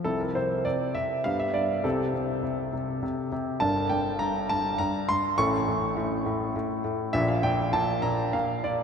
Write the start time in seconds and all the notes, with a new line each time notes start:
0.04 C2 C3 C4 E4 A4
0.20 A#4
0.35 C3 C5
0.65 C3 D5
0.95 C3 E5
1.24 G2 B3 G4 F5
1.40 E5
1.54 G2 D5
1.84 C2 C3 C4 G4 A4
2.13 C3
2.43 C3
2.73 C3
3.03 C3
3.32 C3
3.60 G1 G2 D4 A#4 A5
3.89 G2 G5
4.19 G2 A#5
4.49 G2 A5
4.78 G2 A#5
5.09 G2 C6
5.38 A1 A2 C#4 A4 C#6
5.68 A2
5.97 A2
6.26 A2
6.56 A2
6.84 A2
7.13 A#1 A#2 D4 F4 E5
7.28 F5
7.43 A#2 G5
7.73 A#2 A5
8.02 A#2 A#5
8.33 A#2 F5
8.64 A#2 D5